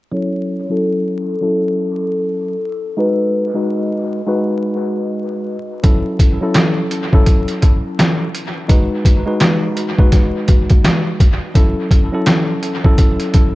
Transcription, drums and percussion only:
5.84 kick, closed hi-hat
6.19 kick, closed hi-hat
6.54 snare, closed hi-hat
6.91 closed hi-hat
7.13 kick
7.26 kick, closed hi-hat
7.48 closed hi-hat
7.62 kick, closed hi-hat
7.99 snare, closed hi-hat
8.35 closed hi-hat
8.69 kick, closed hi-hat
9.05 kick, closed hi-hat
9.40 snare, closed hi-hat
9.77 closed hi-hat
9.99 kick
10.12 kick, snare, closed hi-hat
10.48 kick, closed hi-hat
10.70 kick, closed hi-hat
10.84 snare, closed hi-hat
11.20 kick, closed hi-hat
11.55 kick, closed hi-hat
11.91 kick, closed hi-hat
12.26 snare, closed hi-hat
12.63 closed hi-hat
12.84 kick
12.98 kick, closed hi-hat
13.20 closed hi-hat
13.34 kick, closed hi-hat

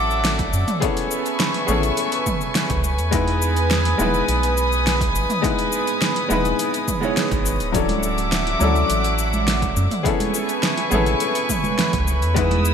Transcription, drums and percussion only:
0.11 cabasa
0.25 snare, open hi-hat, cabasa
0.39 kick, open hi-hat, cabasa
0.53 cabasa
0.68 mid tom, open hi-hat, cabasa
0.82 kick, open hi-hat, cabasa
0.97 open hi-hat, cabasa
1.11 cabasa
1.26 open hi-hat, cabasa
1.40 snare, open hi-hat, cabasa
1.54 open hi-hat
1.68 mid tom, cabasa
1.83 open hi-hat, cabasa
1.97 open hi-hat, cabasa
2.12 open hi-hat, cabasa
2.26 kick, mid tom, cabasa
2.41 cabasa
2.55 snare, open hi-hat, cabasa
2.70 kick, open hi-hat, cabasa
2.84 cabasa
2.99 open hi-hat, cabasa
3.13 kick, open hi-hat, cabasa
3.28 open hi-hat
3.42 cabasa
3.57 open hi-hat, cabasa
3.71 snare, open hi-hat, cabasa
3.85 open hi-hat
4.00 mid tom, cabasa
4.14 cabasa
4.29 open hi-hat, cabasa
4.43 open hi-hat, cabasa
4.57 cabasa
4.72 cabasa
4.87 snare, open hi-hat, cabasa
5.01 kick, open hi-hat, cabasa
5.15 cabasa
5.30 mid tom, open hi-hat, cabasa
5.44 kick, open hi-hat, cabasa
5.59 open hi-hat, cabasa
5.72 cabasa
5.87 open hi-hat, cabasa
6.02 snare, open hi-hat, cabasa
6.16 open hi-hat
6.31 mid tom, cabasa
6.45 open hi-hat, cabasa
6.59 open hi-hat, cabasa
6.74 open hi-hat, cabasa
6.88 kick, mid tom, cabasa
7.03 cabasa
7.17 snare, open hi-hat, cabasa
7.31 kick, open hi-hat, cabasa
7.46 cabasa
7.60 open hi-hat, cabasa
7.74 kick, open hi-hat, low conga, cabasa
7.89 open hi-hat, high conga
8.03 cabasa
8.18 open hi-hat, cabasa
8.32 snare, open hi-hat, cabasa
8.47 open hi-hat, high bongo
8.61 mid tom, high conga, cabasa
8.76 cabasa
8.90 open hi-hat, cabasa
9.04 open hi-hat, cabasa
9.19 cabasa
9.33 high conga, cabasa
9.48 snare, open hi-hat, cabasa
9.62 kick, open hi-hat, cabasa
9.77 cabasa
9.91 mid tom, open hi-hat, high bongo, cabasa
10.05 kick, open hi-hat, low conga, cabasa
10.20 open hi-hat, high conga, cabasa
10.34 high bongo, cabasa
10.49 open hi-hat, cabasa
10.63 snare, open hi-hat, cabasa
10.77 open hi-hat, high bongo
10.92 mid tom, high conga, cabasa
11.06 open hi-hat, cabasa
11.20 open hi-hat, cabasa
11.35 open hi-hat, cabasa
11.50 kick, mid tom, cabasa
11.64 high conga, cabasa
11.79 snare, open hi-hat, low conga, cabasa
11.93 kick, open hi-hat, cabasa
12.08 cabasa
12.22 open hi-hat, high bongo, cabasa
12.36 kick, open hi-hat, low conga, cabasa
12.51 open hi-hat, high conga
12.65 cabasa

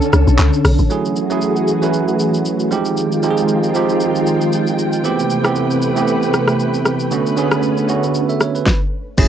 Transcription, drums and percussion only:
0.02 shaker
0.13 cross-stick, shaker
0.28 shaker
0.39 clap, shaker
0.53 shaker
0.65 cross-stick, open hi-hat, shaker
0.78 shaker
0.90 shaker
1.05 shaker
1.16 shaker
1.30 shaker
1.41 shaker
1.56 shaker
1.68 shaker
1.82 shaker
1.93 shaker
2.08 shaker
2.19 shaker
2.34 shaker
2.45 shaker
2.60 shaker
2.72 shaker
2.85 shaker
2.97 shaker
3.12 shaker
3.23 shaker
3.37 shaker
3.48 shaker
3.63 shaker
3.75 shaker
3.89 shaker
4.00 shaker
4.15 shaker
4.27 shaker
4.41 shaker
4.53 shaker
4.67 shaker
4.79 shaker
4.93 shaker
5.04 shaker
5.19 shaker
5.30 shaker
5.44 cross-stick, shaker
5.56 shaker
5.71 shaker
5.82 shaker
5.97 shaker
6.08 shaker
6.23 shaker
6.34 cross-stick, shaker
6.48 cross-stick, shaker
6.60 shaker
6.74 shaker
6.85 cross-stick, shaker
7.00 shaker
7.11 shaker
7.26 shaker
7.37 shaker
7.51 cross-stick, shaker
7.63 shaker
7.77 shaker
7.89 shaker
8.03 shaker
8.15 shaker
8.29 shaker
8.41 cross-stick, shaker
8.55 shaker
8.66 kick, snare
9.18 kick, crash, shaker

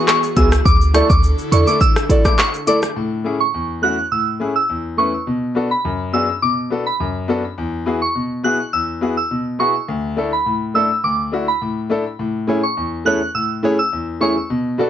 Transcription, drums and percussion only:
0.08 cross-stick, clap, shaker
0.23 shaker
0.37 kick, closed hi-hat, shaker
0.52 cross-stick, shaker
0.66 kick, shaker
0.81 shaker
0.94 cross-stick, closed hi-hat, shaker
1.10 kick, shaker
1.23 shaker
1.38 shaker
1.52 closed hi-hat, shaker
1.67 shaker
1.81 kick, shaker
1.96 cross-stick, shaker
2.10 kick, closed hi-hat, shaker
2.25 kick, cross-stick, shaker
2.39 cross-stick, clap, shaker
2.54 shaker
2.67 closed hi-hat, shaker
2.82 cross-stick, shaker

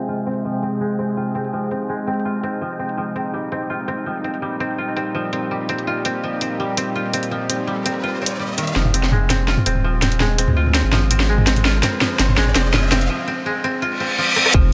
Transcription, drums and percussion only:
0.27 closed hi-hat
0.29 closed hi-hat
0.31 closed hi-hat
0.34 closed hi-hat
0.63 closed hi-hat
1.35 closed hi-hat
1.44 closed hi-hat
1.71 closed hi-hat
2.07 closed hi-hat
2.13 closed hi-hat
2.20 closed hi-hat
2.44 closed hi-hat
2.89 closed hi-hat
3.16 closed hi-hat
3.52 closed hi-hat
3.88 closed hi-hat
4.24 closed hi-hat
4.34 closed hi-hat
4.60 closed hi-hat
4.97 closed hi-hat
5.33 closed hi-hat
5.69 closed hi-hat
5.78 closed hi-hat
6.05 closed hi-hat
6.41 closed hi-hat
6.77 closed hi-hat
7.13 closed hi-hat
7.23 closed hi-hat
7.50 closed hi-hat
7.86 closed hi-hat
8.26 closed hi-hat
8.58 closed hi-hat
8.67 closed hi-hat
8.76 snare
8.85 mid tom
8.94 closed hi-hat
9.03 snare
9.12 mid tom
9.30 snare, closed hi-hat, mid tom
9.48 snare
9.58 mid tom
9.66 closed hi-hat
9.76 mid tom
10.02 snare, closed hi-hat, mid tom
10.12 closed hi-hat
10.20 snare, mid tom
10.38 closed hi-hat
10.48 mid tom
10.66 mid tom
10.75 snare, closed hi-hat
10.93 snare, mid tom
11.11 closed hi-hat, mid tom
11.20 snare
11.38 mid tom
11.47 snare, closed hi-hat
11.56 closed hi-hat, mid tom
11.65 snare
11.83 snare, closed hi-hat, mid tom
12.01 snare, mid tom
12.19 snare, closed hi-hat
12.29 mid tom
12.37 snare
12.47 mid tom
12.55 snare, closed hi-hat
12.74 snare, mid tom
12.92 snare, closed hi-hat, mid tom
13.01 closed hi-hat
14.36 cross-stick
14.46 cross-stick
14.54 kick

